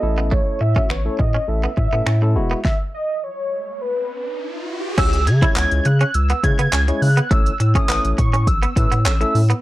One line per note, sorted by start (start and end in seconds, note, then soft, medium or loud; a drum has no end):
0.00 0.40 A1 loud
0.00 0.61 A3 medium
0.00 0.61 C#4 medium
0.00 0.61 E4 medium
0.00 0.61 A4 medium
0.00 0.25 D#5 loud
0.18 0.27 B3 medium
0.25 0.34 D#5 medium
0.31 0.42 A3 medium
0.31 0.61 C#5 loud
0.31 kick loud
0.61 0.80 A2 loud
0.61 0.92 E5 loud
0.61 muted clean electric guitar stroke soft
0.76 0.89 A3 medium
0.76 0.86 C#4 medium
0.76 0.89 C#4 medium
0.76 0.89 E4 medium
0.76 0.89 F#4 medium
0.76 kick loud
0.90 1.09 A1 loud
0.90 1.01 B3 medium
0.90 1.21 C#5 medium
0.90 finger snap loud
1.05 1.24 A3 medium
1.05 1.25 C#4 medium
1.05 1.25 E4 medium
1.05 1.25 A4 medium
1.19 1.38 A2 loud
1.19 1.50 D#5 medium
1.19 muted clean electric guitar stroke soft
1.19 kick medium
1.34 1.44 C#4 medium
1.48 1.67 A1 loud
1.48 1.68 A3 medium
1.48 1.69 C#4 medium
1.48 1.69 E4 medium
1.48 1.69 A4 medium
1.48 2.64 E5 loud
1.64 1.73 B3 medium
1.77 1.87 A2 loud
1.77 muted clean electric guitar stroke soft
1.77 kick medium
1.93 2.02 A2 medium
1.93 2.05 A3 medium
1.93 2.02 B3 medium
1.93 2.05 C#4 medium
1.93 2.05 E4 medium
1.93 2.05 A4 medium
2.06 2.37 A2 loud
2.06 2.17 C#4 medium
2.06 finger snap loud
2.22 2.36 A3 medium
2.22 2.36 C#4 medium
2.22 2.35 E4 medium
2.22 2.36 A4 medium
2.22 muted clean electric guitar stroke soft
2.35 2.55 E1 loud
2.35 2.59 G#3 medium
2.35 2.59 B3 medium
2.35 2.59 E4 medium
2.35 2.59 F#4 loud
2.51 2.61 B3 medium
2.65 2.78 E5 loud
2.65 kick loud
2.65 snare medium
2.65 riser medium
2.94 3.25 D#5 medium
3.23 3.83 C#5 loud
3.81 4.69 B4 medium
4.97 5.28 C#2 loud
4.97 5.18 G#3 medium
4.97 5.18 C#4 medium
4.97 5.08 C#4 medium
4.97 5.18 E4 medium
4.97 5.18 G#4 medium
4.97 5.18 C#5 medium
4.97 5.25 E6 loud
4.97 kick loud
4.97 closed hi-hat medium
4.97 crash loud
5.13 closed hi-hat medium
5.27 5.46 C#3 loud
5.27 5.87 G#6 loud
5.27 muted clean electric guitar stroke soft
5.27 closed hi-hat medium
5.42 5.88 G#3 medium
5.42 5.88 C#4 medium
5.42 5.88 E4 medium
5.42 5.52 E4 medium
5.42 5.88 G#4 medium
5.42 5.88 C#5 medium
5.42 kick loud
5.42 closed hi-hat medium
5.56 5.66 C#2 loud
5.56 5.67 B3 medium
5.56 clap loud
5.56 closed hi-hat medium
5.71 5.81 C#2 loud
5.71 closed hi-hat soft
5.85 6.04 C#3 loud
5.85 6.16 F#6 loud
5.85 muted clean electric guitar stroke soft
5.85 closed hi-hat medium
6.01 6.10 C#4 medium
6.01 closed hi-hat soft
6.14 6.33 C#2 loud
6.14 6.43 E6 loud
6.14 closed hi-hat medium
6.30 6.39 B3 medium
6.30 closed hi-hat medium
6.43 6.54 C#3 loud
6.43 6.57 G#3 medium
6.43 6.57 C#4 medium
6.43 6.58 E4 medium
6.43 6.58 G#4 medium
6.43 6.58 C#5 medium
6.43 7.03 G#6 loud
6.43 muted clean electric guitar stroke soft
6.43 kick medium
6.43 closed hi-hat medium
6.59 6.68 C#3 loud
6.59 6.68 B3 medium
6.59 closed hi-hat medium
6.72 6.91 C#2 loud
6.72 6.83 C#4 medium
6.72 6.80 G#4 medium
6.72 6.80 C#5 medium
6.72 clap loud
6.72 closed hi-hat loud
6.88 7.07 G#3 medium
6.88 7.07 C#4 medium
6.88 7.07 E4 medium
6.88 7.07 G#4 medium
6.88 7.07 C#5 medium
6.88 muted clean electric guitar stroke soft
6.88 closed hi-hat medium
7.02 7.21 C#3 loud
7.02 7.32 F#6 loud
7.02 open hi-hat medium
7.17 7.27 B3 medium
7.17 closed hi-hat medium
7.31 7.50 A1 loud
7.31 7.41 A3 medium
7.31 7.51 A3 medium
7.31 7.51 C#4 medium
7.31 7.51 E4 medium
7.31 7.51 A4 medium
7.31 7.51 C#5 medium
7.31 7.77 E6 loud
7.31 kick loud
7.31 closed hi-hat loud
7.46 closed hi-hat medium
7.60 7.79 A2 loud
7.60 muted clean electric guitar stroke soft
7.60 closed hi-hat medium
7.75 8.21 A3 medium
7.75 7.85 C#4 medium
7.75 8.21 C#4 medium
7.75 8.21 E4 medium
7.75 8.21 A4 medium
7.75 8.21 C#5 medium
7.75 8.18 D#6 loud
7.75 kick loud
7.75 closed hi-hat medium
7.89 7.99 A1 loud
7.89 8.00 B3 medium
7.89 clap loud
7.89 closed hi-hat loud
8.04 8.13 A1 loud
8.04 closed hi-hat medium
8.18 8.49 A2 loud
8.18 8.49 C#6 medium
8.18 muted clean electric guitar stroke soft
8.18 kick medium
8.18 closed hi-hat medium
8.33 8.43 C#4 medium
8.33 closed hi-hat soft
8.47 8.66 A1 loud
8.47 9.05 E6 loud
8.47 kick loud
8.47 closed hi-hat medium
8.63 8.72 B3 medium
8.63 closed hi-hat medium
8.76 8.86 A2 loud
8.76 8.90 A3 medium
8.76 8.90 C#4 medium
8.76 8.91 E4 medium
8.76 8.91 A4 medium
8.76 8.91 B4 medium
8.76 muted clean electric guitar stroke soft
8.76 kick medium
8.76 closed hi-hat medium
8.92 9.07 A2 loud
8.92 9.01 B3 medium
8.92 closed hi-hat medium
9.05 9.24 A1 loud
9.05 9.16 C#4 medium
9.05 9.12 A4 medium
9.05 9.13 C#5 medium
9.05 9.47 E6 loud
9.05 clap loud
9.05 closed hi-hat loud
9.21 9.40 A3 medium
9.21 9.40 C#4 medium
9.21 9.40 E4 medium
9.21 9.40 A4 medium
9.21 9.40 E5 medium
9.21 muted clean electric guitar stroke soft
9.21 closed hi-hat soft
9.35 9.54 A2 loud
9.35 open hi-hat medium
9.50 9.59 B3 medium
9.50 closed hi-hat medium